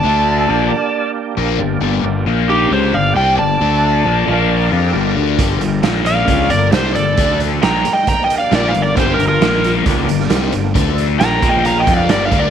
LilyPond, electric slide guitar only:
\new Staff \with { instrumentName = "Electric slide guitar" } { \time 4/4 \key g \minor \tempo 4 = 134 a''2~ a''8 r4. | r4. g'8 c''8 f''8 g''8 a''8~ | a''2~ a''8 r4. | r4. f''4 d''8 c''8 d''8~ |
d''8 r8 \tuplet 3/2 { bes''4 g''8 bes''8 g''8 f''8 d''8 f''8 d''8 } | \tuplet 3/2 { c''8 bes'8 bes'8~ } bes'8 r2 r8 | r4 \tuplet 3/2 { bes''4 g''8 bes''8 g''8 f''8 d''8 f''8 d''8 } | }